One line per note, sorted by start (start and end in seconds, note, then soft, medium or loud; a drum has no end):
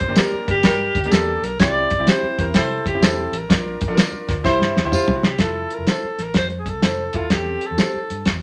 0.00 0.20 C5 loud
0.00 kick loud
0.00 closed hi-hat medium
0.08 0.15 G1 medium
0.08 0.63 A#3 medium
0.08 0.64 D4 medium
0.08 0.64 G4 medium
0.16 0.35 G4 medium
0.16 0.35 A#4 medium
0.16 0.49 A#4 loud
0.16 0.35 D5 loud
0.16 snare loud
0.16 closed hi-hat medium
0.16 tambourine loud
0.33 muted fingered electric bass stroke soft
0.48 0.60 G1 medium
0.48 0.55 G3 medium
0.48 0.55 D4 medium
0.48 1.13 G4 medium
0.48 0.55 A#4 medium
0.48 kick loud
0.48 closed hi-hat medium
0.63 0.88 G2 loud
0.63 1.01 G3 medium
0.63 1.01 D4 medium
0.63 1.01 A#4 loud
0.63 kick medium
0.63 snare loud
0.63 closed hi-hat medium
0.63 tambourine medium
0.95 1.08 D2 medium
0.95 kick medium
0.95 closed hi-hat medium
1.04 1.44 A#3 medium
1.04 1.44 D4 medium
1.04 1.45 G4 medium
1.04 closed hi-hat soft
1.11 1.35 E2 medium
1.11 1.30 G4 medium
1.11 1.46 A4 loud
1.11 1.30 A#4 medium
1.11 1.30 D5 medium
1.11 snare loud
1.11 closed hi-hat medium
1.11 tambourine loud
1.42 1.55 B1 medium
1.42 1.59 A#4 medium
1.42 closed hi-hat medium
1.59 1.84 C2 medium
1.59 1.88 C4 medium
1.59 1.89 E4 medium
1.59 1.89 G4 medium
1.59 2.10 D5 loud
1.59 kick loud
1.59 snare loud
1.59 closed hi-hat loud
1.59 tambourine medium
1.90 kick loud
1.90 closed hi-hat medium
1.99 2.05 C2 medium
1.99 2.53 C4 medium
1.99 2.54 E4 medium
1.99 2.54 G4 medium
2.07 2.25 E4 medium
2.07 2.25 G4 loud
2.07 2.25 C5 medium
2.07 2.42 C5 loud
2.07 snare loud
2.07 closed hi-hat medium
2.07 tambourine loud
2.23 muted fingered electric bass stroke soft
2.38 2.51 E2 medium
2.38 2.45 G3 medium
2.38 2.45 E4 medium
2.38 2.58 A#4 medium
2.38 2.45 C5 medium
2.38 kick medium
2.38 closed hi-hat medium
2.54 2.79 C3 loud
2.54 2.92 G3 medium
2.54 2.92 E4 loud
2.54 2.87 A4 medium
2.54 2.92 C5 medium
2.54 kick medium
2.54 snare loud
2.54 closed hi-hat loud
2.54 tambourine medium
2.85 2.98 G1 medium
2.85 3.05 G4 medium
2.85 kick medium
2.85 closed hi-hat medium
2.94 3.34 C4 medium
2.94 3.34 E4 medium
2.94 3.34 G4 medium
3.00 3.25 E1 loud
3.00 3.20 E4 medium
3.00 3.21 G4 medium
3.00 3.39 A4 loud
3.00 3.21 C5 medium
3.00 snare loud
3.00 closed hi-hat medium
3.00 tambourine loud
3.32 3.45 A1 medium
3.32 closed hi-hat medium
3.38 3.99 A#4 medium
3.49 3.74 A#1 medium
3.49 3.78 D4 medium
3.49 3.78 F4 medium
3.49 3.79 A#4 medium
3.49 kick loud
3.49 snare loud
3.49 closed hi-hat loud
3.49 tambourine medium
3.81 kick loud
3.81 closed hi-hat medium
3.88 3.95 A#1 medium
3.88 4.43 D4 medium
3.88 4.43 F4 medium
3.88 3.92 A4 medium
3.94 4.15 F4 medium
3.94 4.46 A#4 medium
3.94 4.15 A#4 medium
3.94 4.15 D5 medium
3.94 snare loud
3.94 closed hi-hat medium
3.94 tambourine medium
4.12 muted fingered electric bass stroke soft
4.28 4.41 D2 medium
4.28 4.35 F3 medium
4.28 4.35 D4 medium
4.28 4.35 A#4 medium
4.28 kick loud
4.28 snare soft
4.28 closed hi-hat medium
4.44 4.57 C2 loud
4.44 4.82 G3 medium
4.44 4.79 E4 loud
4.44 4.82 E4 loud
4.44 4.79 G4 medium
4.44 4.82 C5 loud
4.44 4.80 C5 loud
4.44 kick loud
4.44 snare medium
4.44 tambourine medium
4.59 4.72 G2 medium
4.59 snare medium
4.77 4.83 E2 medium
4.77 snare medium
4.84 4.90 D2 medium
4.84 5.24 E4 medium
4.84 5.25 G4 medium
4.84 5.25 C5 loud
4.92 5.10 E4 medium
4.92 5.18 F4 medium
4.92 5.11 G4 medium
4.92 5.11 C5 loud
4.92 muted fingered electric bass stroke soft
4.92 mid tom medium
4.92 tambourine loud
5.08 5.20 C2 medium
5.08 floor tom loud
5.16 5.26 F#4 medium
5.23 5.37 C3 loud
5.23 5.41 G4 medium
5.23 snare loud
5.39 5.64 F1 medium
5.39 6.02 E4 medium
5.39 6.02 F4 medium
5.39 5.76 A4 loud
5.39 6.02 A4 medium
5.39 kick medium
5.39 snare loud
5.39 closed hi-hat loud
5.39 tambourine medium
5.70 5.93 A#4 medium
5.70 closed hi-hat medium
5.78 5.85 F1 medium
5.87 6.05 E4 medium
5.87 6.06 A4 medium
5.87 6.06 C5 medium
5.87 snare loud
5.87 closed hi-hat medium
5.87 tambourine medium
5.92 6.25 A4 medium
6.03 muted fingered electric bass stroke soft
6.18 6.31 A1 medium
6.18 snare soft
6.18 closed hi-hat medium
6.23 6.37 A#4 medium
6.34 6.68 F2 loud
6.34 kick medium
6.34 snare loud
6.34 closed hi-hat medium
6.34 tambourine medium
6.38 6.47 C5 loud
6.50 closed hi-hat soft
6.60 6.70 G#4 medium
6.66 6.79 C2 medium
6.66 7.17 A4 loud
6.66 kick medium
6.66 closed hi-hat medium
6.82 7.07 F1 medium
6.82 7.01 E4 medium
6.82 7.01 A4 medium
6.82 7.01 C5 loud
6.82 snare loud
6.82 closed hi-hat medium
6.82 tambourine medium
7.13 7.27 D#1 loud
7.13 7.24 E4 medium
7.13 7.25 F4 medium
7.13 7.34 F4 medium
7.13 7.25 A4 medium
7.13 kick medium
7.13 closed hi-hat medium
7.30 7.55 E2 loud
7.30 7.93 C4 medium
7.30 7.93 G4 medium
7.30 7.68 G4 loud
7.30 7.93 A4 medium
7.30 kick loud
7.30 snare loud
7.30 closed hi-hat loud
7.30 tambourine medium
7.61 closed hi-hat medium
7.66 8.28 A4 medium
7.71 7.77 E2 medium
7.78 7.96 E4 medium
7.78 7.97 G4 medium
7.78 7.97 C5 medium
7.78 snare loud
7.78 closed hi-hat medium
7.78 tambourine loud
7.95 muted fingered electric bass stroke soft
8.10 8.23 G2 medium
8.10 closed hi-hat medium
8.25 8.42 E2 medium
8.25 kick medium
8.25 snare loud
8.25 closed hi-hat medium
8.25 tambourine medium